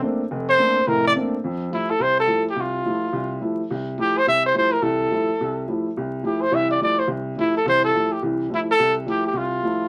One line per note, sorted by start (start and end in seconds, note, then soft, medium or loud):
0.01 0.19 A3 medium
0.01 0.20 A#3 soft
0.01 0.20 C4 soft
0.01 0.20 D4 medium
0.31 0.54 F1 medium
0.49 0.89 C5 loud
0.59 0.76 A3 medium
0.59 0.76 A#3 soft
0.59 0.76 C4 soft
0.59 0.77 D4 medium
0.87 1.11 F1 medium
0.87 1.11 A2 medium
0.87 1.04 A#4 medium
1.07 1.12 D5 loud
1.15 1.33 A3 medium
1.15 1.33 A#3 medium
1.15 1.33 C4 medium
1.15 1.33 D4 medium
1.44 1.67 F2 medium
1.71 1.89 F3 soft
1.71 1.90 G3 soft
1.71 1.90 A3 soft
1.71 1.90 E4 soft
1.71 1.92 E4 medium
1.90 2.03 A4 medium
1.99 2.23 C2 medium
1.99 2.18 C5 medium
2.20 2.44 A4 medium
2.27 2.45 F3 soft
2.27 2.45 G3 soft
2.27 2.46 A3 soft
2.27 2.46 E4 soft
2.50 2.62 G4 medium
2.56 2.80 C2 medium
2.61 3.43 F4 medium
2.85 3.03 F3 soft
2.85 3.03 G3 soft
2.85 3.03 A3 soft
2.85 3.03 E4 soft
3.13 3.37 C2 medium
3.40 3.59 F3 soft
3.40 3.59 G3 soft
3.40 3.59 A3 soft
3.40 3.59 E4 medium
3.70 3.94 C2 medium
3.98 4.16 F3 soft
3.98 4.16 G3 soft
3.98 4.16 A3 soft
3.98 4.16 E4 medium
3.98 4.20 G4 medium
4.18 4.27 C5 medium
4.27 4.50 C2 medium
4.27 4.43 E5 loud
4.46 4.55 C5 medium
4.54 4.72 F3 soft
4.54 4.72 G3 soft
4.54 4.72 A3 soft
4.54 4.72 E4 medium
4.54 4.74 C5 medium
4.72 4.84 A#4 medium
4.82 5.06 C2 medium
4.82 5.06 E3 medium
4.82 5.67 A4 medium
5.10 5.28 F3 soft
5.10 5.29 G3 soft
5.10 5.29 A3 soft
5.10 5.29 E4 medium
5.41 5.64 C2 medium
5.67 5.85 F3 soft
5.67 5.85 G3 soft
5.67 5.85 A3 soft
5.67 5.86 E4 medium
5.97 6.20 C2 medium
6.23 6.41 F3 soft
6.23 6.41 G3 soft
6.23 6.41 A3 soft
6.23 6.42 E4 medium
6.23 6.43 G4 medium
6.42 6.56 C5 medium
6.51 6.76 C2 medium
6.51 6.75 E3 medium
6.51 6.70 E5 medium
6.71 6.80 D5 medium
6.80 6.98 F3 soft
6.80 6.98 G3 soft
6.80 6.98 A3 soft
6.80 6.99 E4 soft
6.80 7.01 D5 medium
6.99 7.09 C5 medium
7.07 7.32 C2 medium
7.36 7.55 F3 soft
7.36 7.54 G3 soft
7.36 7.55 A3 soft
7.36 7.55 E4 soft
7.36 7.54 E4 medium
7.57 7.66 A4 medium
7.65 7.89 C2 medium
7.65 7.89 E3 medium
7.65 7.83 C5 loud
7.84 8.14 A4 medium
7.94 8.12 F3 soft
7.94 8.12 G3 soft
7.94 8.12 A3 soft
7.94 8.12 E4 medium
8.12 8.22 G4 medium
8.22 8.46 C2 medium
8.22 8.46 E3 medium
8.49 8.68 F3 soft
8.49 8.68 G3 soft
8.49 8.68 A3 soft
8.49 8.68 E4 medium
8.54 8.61 E4 medium
8.71 8.95 A4 loud
8.79 9.03 C2 medium
9.06 9.24 F3 soft
9.06 9.25 G3 soft
9.06 9.25 A3 soft
9.06 9.25 E4 medium
9.06 9.24 G4 medium
9.27 9.38 G4 medium
9.33 9.58 C2 medium
9.33 9.88 F4 medium
9.63 9.81 F3 soft
9.63 9.81 G3 soft
9.63 9.81 A3 soft
9.63 9.81 E4 medium